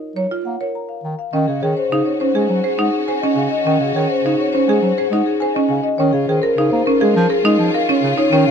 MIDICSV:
0, 0, Header, 1, 5, 480
1, 0, Start_track
1, 0, Tempo, 582524
1, 1099, Time_signature, 4, 2, 24, 8
1, 7011, End_track
2, 0, Start_track
2, 0, Title_t, "Marimba"
2, 0, Program_c, 0, 12
2, 135, Note_on_c, 0, 73, 49
2, 294, Note_off_c, 0, 73, 0
2, 371, Note_on_c, 0, 78, 47
2, 497, Note_on_c, 0, 70, 47
2, 533, Note_off_c, 0, 78, 0
2, 620, Note_on_c, 0, 82, 55
2, 655, Note_off_c, 0, 70, 0
2, 731, Note_on_c, 0, 77, 49
2, 776, Note_off_c, 0, 82, 0
2, 862, Note_on_c, 0, 82, 43
2, 893, Note_off_c, 0, 77, 0
2, 978, Note_on_c, 0, 77, 62
2, 1016, Note_off_c, 0, 82, 0
2, 1095, Note_on_c, 0, 75, 72
2, 1135, Note_off_c, 0, 77, 0
2, 1218, Note_on_c, 0, 68, 60
2, 1254, Note_off_c, 0, 75, 0
2, 1331, Note_on_c, 0, 73, 61
2, 1375, Note_off_c, 0, 68, 0
2, 1457, Note_on_c, 0, 72, 78
2, 1493, Note_off_c, 0, 73, 0
2, 1578, Note_on_c, 0, 68, 62
2, 1615, Note_off_c, 0, 72, 0
2, 1693, Note_on_c, 0, 73, 62
2, 1735, Note_off_c, 0, 68, 0
2, 1814, Note_on_c, 0, 72, 87
2, 1853, Note_off_c, 0, 73, 0
2, 1939, Note_on_c, 0, 80, 64
2, 1973, Note_off_c, 0, 72, 0
2, 2055, Note_on_c, 0, 72, 63
2, 2095, Note_off_c, 0, 80, 0
2, 2173, Note_on_c, 0, 68, 75
2, 2214, Note_off_c, 0, 72, 0
2, 2290, Note_on_c, 0, 78, 69
2, 2333, Note_off_c, 0, 68, 0
2, 2412, Note_on_c, 0, 68, 58
2, 2452, Note_off_c, 0, 78, 0
2, 2536, Note_on_c, 0, 80, 77
2, 2573, Note_off_c, 0, 68, 0
2, 2650, Note_on_c, 0, 75, 65
2, 2694, Note_off_c, 0, 80, 0
2, 2768, Note_on_c, 0, 80, 68
2, 2812, Note_off_c, 0, 75, 0
2, 2892, Note_on_c, 0, 75, 81
2, 2931, Note_off_c, 0, 80, 0
2, 3001, Note_off_c, 0, 75, 0
2, 3011, Note_on_c, 0, 75, 82
2, 3137, Note_on_c, 0, 68, 66
2, 3172, Note_off_c, 0, 75, 0
2, 3253, Note_on_c, 0, 73, 64
2, 3295, Note_off_c, 0, 68, 0
2, 3375, Note_on_c, 0, 72, 85
2, 3413, Note_off_c, 0, 73, 0
2, 3501, Note_on_c, 0, 68, 65
2, 3534, Note_off_c, 0, 72, 0
2, 3622, Note_on_c, 0, 73, 66
2, 3656, Note_off_c, 0, 68, 0
2, 3731, Note_on_c, 0, 72, 90
2, 3776, Note_off_c, 0, 73, 0
2, 3856, Note_on_c, 0, 80, 62
2, 3892, Note_off_c, 0, 72, 0
2, 3978, Note_on_c, 0, 72, 71
2, 4014, Note_off_c, 0, 80, 0
2, 4099, Note_on_c, 0, 68, 79
2, 4135, Note_off_c, 0, 72, 0
2, 4218, Note_on_c, 0, 78, 68
2, 4255, Note_off_c, 0, 68, 0
2, 4334, Note_on_c, 0, 68, 70
2, 4375, Note_off_c, 0, 78, 0
2, 4452, Note_on_c, 0, 80, 79
2, 4494, Note_off_c, 0, 68, 0
2, 4569, Note_on_c, 0, 75, 70
2, 4613, Note_off_c, 0, 80, 0
2, 4687, Note_on_c, 0, 80, 70
2, 4732, Note_off_c, 0, 75, 0
2, 4808, Note_on_c, 0, 75, 78
2, 4851, Note_off_c, 0, 80, 0
2, 4929, Note_on_c, 0, 73, 88
2, 4971, Note_off_c, 0, 75, 0
2, 5048, Note_on_c, 0, 68, 71
2, 5092, Note_off_c, 0, 73, 0
2, 5169, Note_on_c, 0, 72, 67
2, 5212, Note_off_c, 0, 68, 0
2, 5287, Note_on_c, 0, 70, 92
2, 5332, Note_off_c, 0, 72, 0
2, 5410, Note_on_c, 0, 68, 70
2, 5451, Note_off_c, 0, 70, 0
2, 5523, Note_on_c, 0, 72, 72
2, 5572, Note_off_c, 0, 68, 0
2, 5650, Note_on_c, 0, 70, 97
2, 5690, Note_off_c, 0, 72, 0
2, 5770, Note_on_c, 0, 77, 72
2, 5812, Note_off_c, 0, 70, 0
2, 5895, Note_on_c, 0, 70, 75
2, 5932, Note_off_c, 0, 77, 0
2, 6011, Note_on_c, 0, 68, 87
2, 6054, Note_off_c, 0, 70, 0
2, 6144, Note_on_c, 0, 75, 71
2, 6173, Note_off_c, 0, 68, 0
2, 6261, Note_on_c, 0, 68, 64
2, 6297, Note_off_c, 0, 75, 0
2, 6383, Note_on_c, 0, 77, 98
2, 6416, Note_off_c, 0, 68, 0
2, 6502, Note_on_c, 0, 73, 74
2, 6537, Note_off_c, 0, 77, 0
2, 6621, Note_on_c, 0, 77, 69
2, 6657, Note_off_c, 0, 73, 0
2, 6740, Note_on_c, 0, 73, 99
2, 6776, Note_off_c, 0, 77, 0
2, 6847, Note_off_c, 0, 73, 0
2, 6857, Note_on_c, 0, 73, 102
2, 6974, Note_on_c, 0, 68, 83
2, 7011, Note_off_c, 0, 68, 0
2, 7011, Note_off_c, 0, 73, 0
2, 7011, End_track
3, 0, Start_track
3, 0, Title_t, "Marimba"
3, 0, Program_c, 1, 12
3, 136, Note_on_c, 1, 73, 51
3, 258, Note_on_c, 1, 65, 57
3, 294, Note_off_c, 1, 73, 0
3, 415, Note_off_c, 1, 65, 0
3, 500, Note_on_c, 1, 73, 46
3, 656, Note_off_c, 1, 73, 0
3, 1099, Note_on_c, 1, 61, 64
3, 1255, Note_off_c, 1, 61, 0
3, 1341, Note_on_c, 1, 68, 56
3, 1496, Note_off_c, 1, 68, 0
3, 1585, Note_on_c, 1, 63, 78
3, 1737, Note_off_c, 1, 63, 0
3, 1823, Note_on_c, 1, 61, 62
3, 1937, Note_on_c, 1, 68, 73
3, 1977, Note_off_c, 1, 61, 0
3, 2095, Note_off_c, 1, 68, 0
3, 2176, Note_on_c, 1, 72, 66
3, 2297, Note_on_c, 1, 63, 76
3, 2334, Note_off_c, 1, 72, 0
3, 2455, Note_off_c, 1, 63, 0
3, 2541, Note_on_c, 1, 72, 61
3, 2665, Note_on_c, 1, 61, 76
3, 2696, Note_off_c, 1, 72, 0
3, 2818, Note_off_c, 1, 61, 0
3, 3023, Note_on_c, 1, 61, 73
3, 3177, Note_off_c, 1, 61, 0
3, 3265, Note_on_c, 1, 68, 61
3, 3417, Note_off_c, 1, 68, 0
3, 3509, Note_on_c, 1, 63, 82
3, 3659, Note_off_c, 1, 63, 0
3, 3746, Note_on_c, 1, 61, 68
3, 3867, Note_on_c, 1, 68, 82
3, 3898, Note_off_c, 1, 61, 0
3, 4018, Note_off_c, 1, 68, 0
3, 4105, Note_on_c, 1, 72, 68
3, 4227, Note_on_c, 1, 63, 86
3, 4257, Note_off_c, 1, 72, 0
3, 4378, Note_off_c, 1, 63, 0
3, 4466, Note_on_c, 1, 72, 63
3, 4583, Note_on_c, 1, 61, 85
3, 4618, Note_off_c, 1, 72, 0
3, 4737, Note_off_c, 1, 61, 0
3, 4942, Note_on_c, 1, 61, 77
3, 5096, Note_off_c, 1, 61, 0
3, 5184, Note_on_c, 1, 68, 63
3, 5298, Note_on_c, 1, 70, 67
3, 5337, Note_off_c, 1, 68, 0
3, 5424, Note_on_c, 1, 63, 82
3, 5455, Note_off_c, 1, 70, 0
3, 5577, Note_off_c, 1, 63, 0
3, 5661, Note_on_c, 1, 61, 75
3, 5778, Note_on_c, 1, 68, 89
3, 5816, Note_off_c, 1, 61, 0
3, 5935, Note_off_c, 1, 68, 0
3, 6015, Note_on_c, 1, 70, 72
3, 6139, Note_on_c, 1, 63, 98
3, 6174, Note_off_c, 1, 70, 0
3, 6295, Note_off_c, 1, 63, 0
3, 6380, Note_on_c, 1, 70, 65
3, 6502, Note_on_c, 1, 61, 84
3, 6536, Note_off_c, 1, 70, 0
3, 6657, Note_off_c, 1, 61, 0
3, 6737, Note_on_c, 1, 63, 83
3, 6864, Note_on_c, 1, 61, 83
3, 6895, Note_off_c, 1, 63, 0
3, 7011, Note_off_c, 1, 61, 0
3, 7011, End_track
4, 0, Start_track
4, 0, Title_t, "String section"
4, 0, Program_c, 2, 48
4, 1103, Note_on_c, 2, 61, 61
4, 1107, Note_on_c, 2, 66, 60
4, 4788, Note_off_c, 2, 61, 0
4, 4790, Note_off_c, 2, 66, 0
4, 4937, Note_on_c, 2, 61, 65
4, 4939, Note_on_c, 2, 65, 73
4, 7011, Note_off_c, 2, 61, 0
4, 7011, Note_off_c, 2, 65, 0
4, 7011, End_track
5, 0, Start_track
5, 0, Title_t, "Bass clarinet"
5, 0, Program_c, 3, 71
5, 132, Note_on_c, 3, 54, 49
5, 225, Note_off_c, 3, 54, 0
5, 377, Note_on_c, 3, 58, 46
5, 468, Note_off_c, 3, 58, 0
5, 857, Note_on_c, 3, 51, 53
5, 948, Note_off_c, 3, 51, 0
5, 1099, Note_on_c, 3, 51, 75
5, 1189, Note_off_c, 3, 51, 0
5, 1220, Note_on_c, 3, 49, 63
5, 1310, Note_off_c, 3, 49, 0
5, 1343, Note_on_c, 3, 51, 66
5, 1432, Note_off_c, 3, 51, 0
5, 1581, Note_on_c, 3, 49, 63
5, 1670, Note_off_c, 3, 49, 0
5, 1935, Note_on_c, 3, 56, 64
5, 2027, Note_off_c, 3, 56, 0
5, 2059, Note_on_c, 3, 54, 69
5, 2149, Note_off_c, 3, 54, 0
5, 2297, Note_on_c, 3, 56, 57
5, 2388, Note_off_c, 3, 56, 0
5, 2772, Note_on_c, 3, 49, 67
5, 2865, Note_off_c, 3, 49, 0
5, 3012, Note_on_c, 3, 51, 78
5, 3105, Note_off_c, 3, 51, 0
5, 3134, Note_on_c, 3, 49, 65
5, 3226, Note_off_c, 3, 49, 0
5, 3254, Note_on_c, 3, 51, 75
5, 3346, Note_off_c, 3, 51, 0
5, 3497, Note_on_c, 3, 49, 63
5, 3588, Note_off_c, 3, 49, 0
5, 3857, Note_on_c, 3, 56, 67
5, 3948, Note_off_c, 3, 56, 0
5, 3972, Note_on_c, 3, 54, 72
5, 4065, Note_off_c, 3, 54, 0
5, 4210, Note_on_c, 3, 56, 67
5, 4304, Note_off_c, 3, 56, 0
5, 4695, Note_on_c, 3, 49, 74
5, 4787, Note_off_c, 3, 49, 0
5, 4934, Note_on_c, 3, 51, 86
5, 5026, Note_off_c, 3, 51, 0
5, 5055, Note_on_c, 3, 49, 72
5, 5147, Note_off_c, 3, 49, 0
5, 5179, Note_on_c, 3, 51, 74
5, 5269, Note_off_c, 3, 51, 0
5, 5419, Note_on_c, 3, 49, 71
5, 5509, Note_off_c, 3, 49, 0
5, 5539, Note_on_c, 3, 58, 67
5, 5629, Note_off_c, 3, 58, 0
5, 5786, Note_on_c, 3, 56, 69
5, 5874, Note_off_c, 3, 56, 0
5, 5901, Note_on_c, 3, 53, 82
5, 5990, Note_off_c, 3, 53, 0
5, 6133, Note_on_c, 3, 56, 75
5, 6225, Note_off_c, 3, 56, 0
5, 6255, Note_on_c, 3, 53, 67
5, 6347, Note_off_c, 3, 53, 0
5, 6616, Note_on_c, 3, 49, 85
5, 6708, Note_off_c, 3, 49, 0
5, 6853, Note_on_c, 3, 51, 89
5, 6946, Note_off_c, 3, 51, 0
5, 6980, Note_on_c, 3, 49, 78
5, 7011, Note_off_c, 3, 49, 0
5, 7011, End_track
0, 0, End_of_file